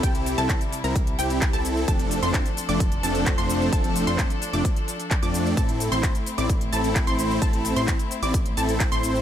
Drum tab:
HH |xxoxxxoxxxoxxxo-|xxoxxxoxxxoxxxo-|xxoxxxoxxxoxxxo-|xxoxxxoxxxoxxxo-|
SH |x-xxxxxxx-xxxxxx|x-xxxxxxx-xxxxxx|x-xxxxxxx-xxxxxx|x-xxxxxxx-xxxxxx|
CP |----x-------x---|----x-------x---|----x-------x---|----x-------x---|
BD |o---o---o---o---|o---o---o---o---|o---o---o---o---|o---o---o---o---|

HH |xxoxxxoxxxoxxxo-|
SH |x-xxxxxxx-xxxxxx|
CP |----x-------x---|
BD |o---o---o---o---|